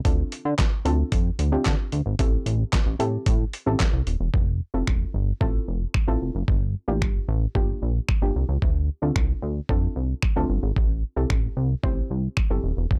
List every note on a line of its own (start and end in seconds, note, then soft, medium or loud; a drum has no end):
0.05 0.23 D2 loud
0.05 0.52 C4 medium
0.05 0.52 D4 medium
0.05 0.52 F4 medium
0.05 0.52 A4 loud
0.05 kick loud
0.05 closed hi-hat medium
0.32 closed hi-hat medium
0.45 0.54 D3 loud
0.59 kick loud
0.59 snare medium
0.59 clap loud
0.59 closed hi-hat medium
0.85 1.03 D2 medium
0.85 1.24 C4 medium
0.85 1.24 D4 medium
0.85 1.24 F4 medium
0.85 1.24 A4 medium
0.85 closed hi-hat medium
1.12 1.30 F2 medium
1.12 kick loud
1.12 closed hi-hat medium
1.39 1.57 D2 medium
1.39 closed hi-hat medium
1.52 1.91 C4 loud
1.52 1.91 D4 medium
1.52 1.91 F4 medium
1.52 1.91 G4 loud
1.65 1.75 D3 loud
1.65 kick loud
1.65 snare medium
1.65 clap loud
1.65 closed hi-hat medium
1.92 2.02 D2 medium
1.92 closed hi-hat soft
2.06 2.15 G#1 loud
2.19 2.37 A1 loud
2.19 2.66 C4 medium
2.19 2.66 E4 medium
2.19 2.66 G4 medium
2.19 2.66 A4 medium
2.19 kick loud
2.19 closed hi-hat medium
2.46 2.64 A1 loud
2.46 closed hi-hat medium
2.73 kick loud
2.73 snare loud
2.73 clap loud
2.73 closed hi-hat medium
2.86 2.95 A1 loud
2.99 3.18 A2 loud
2.99 3.38 C4 medium
2.99 3.39 E4 medium
2.99 3.39 G4 medium
2.99 3.39 A4 loud
2.99 closed hi-hat medium
3.26 3.45 A2 loud
3.26 kick loud
3.26 closed hi-hat medium
3.53 closed hi-hat medium
3.66 3.76 A1 medium
3.66 4.05 C4 medium
3.66 4.06 E4 medium
3.66 4.06 G4 medium
3.66 4.06 A4 loud
3.80 kick loud
3.80 snare medium
3.80 clap loud
3.80 closed hi-hat medium
3.93 4.03 C2 medium
4.07 4.16 D#1 medium
4.07 closed hi-hat soft
4.20 4.29 E1 medium
4.34 4.61 F1 loud
4.34 kick loud
4.74 4.83 F1 medium
4.74 5.13 C4 medium
4.74 5.13 E4 medium
4.74 5.13 F4 medium
4.74 5.13 A4 medium
4.87 5.05 E1 medium
4.87 finger snap loud
4.87 kick loud
5.14 5.32 G1 medium
5.41 5.59 A1 loud
5.41 5.80 C4 medium
5.41 5.80 E4 medium
5.41 5.80 F4 medium
5.41 5.80 A4 loud
5.41 kick loud
5.68 5.86 F1 medium
5.94 finger snap loud
5.94 kick medium
6.07 6.17 A1 loud
6.07 6.48 C4 medium
6.07 6.48 E4 medium
6.07 6.48 F4 medium
6.07 6.48 A4 loud
6.22 6.30 F1 medium
6.35 6.44 F#1 medium
6.48 6.75 G1 loud
6.48 kick loud
6.88 7.03 A1 medium
6.88 7.27 A#3 medium
6.88 7.27 D4 medium
6.88 7.27 F4 medium
6.88 7.27 G4 medium
7.02 7.20 G1 loud
7.02 finger snap loud
7.02 kick loud
7.28 7.47 A1 loud
7.55 7.73 G1 medium
7.55 7.94 A#3 loud
7.55 7.94 D4 medium
7.55 7.94 F4 medium
7.55 7.94 G4 loud
7.55 kick loud
7.82 8.00 A#1 medium
8.09 finger snap loud
8.09 kick loud
8.22 8.31 G1 medium
8.22 8.62 A#3 medium
8.22 8.62 D4 medium
8.22 8.62 F4 medium
8.22 8.62 G4 medium
8.35 8.45 C2 medium
8.49 8.58 C#2 medium
8.62 8.89 D2 loud
8.62 kick loud
9.02 9.12 D2 loud
9.02 9.41 C4 medium
9.02 9.41 D4 medium
9.02 9.41 F4 medium
9.02 9.41 A4 medium
9.16 9.34 C2 medium
9.16 finger snap loud
9.16 kick loud
9.42 9.61 D2 medium
9.69 9.87 F2 medium
9.69 10.08 C4 medium
9.69 10.08 D4 medium
9.69 10.08 F4 medium
9.69 10.08 A4 medium
9.69 kick loud
9.96 10.14 C2 medium
10.22 finger snap loud
10.22 kick loud
10.36 10.45 D2 medium
10.36 10.76 C4 loud
10.36 10.76 D4 medium
10.36 10.76 F4 medium
10.36 10.77 A4 loud
10.50 10.59 G1 medium
10.63 10.72 G#1 medium
10.76 11.04 A1 loud
10.76 kick loud
11.16 11.26 C2 medium
11.16 11.55 C4 medium
11.16 11.56 E4 medium
11.16 11.56 G4 medium
11.16 11.56 A4 medium
11.30 11.48 A1 medium
11.30 finger snap loud
11.30 kick loud
11.57 11.75 C2 medium
11.83 12.02 A1 medium
11.83 12.22 C4 loud
11.83 12.22 E4 medium
11.83 12.23 G4 medium
11.83 12.23 C5 loud
11.83 kick loud
12.10 12.28 C2 medium
12.37 finger snap loud
12.37 kick loud
12.50 12.60 G1 medium
12.50 12.91 C4 medium
12.50 12.91 E4 medium
12.50 12.91 G4 medium
12.50 12.91 A4 medium
12.64 12.73 D#1 medium
12.77 12.86 E1 medium
12.91 12.99 F1 loud
12.91 kick loud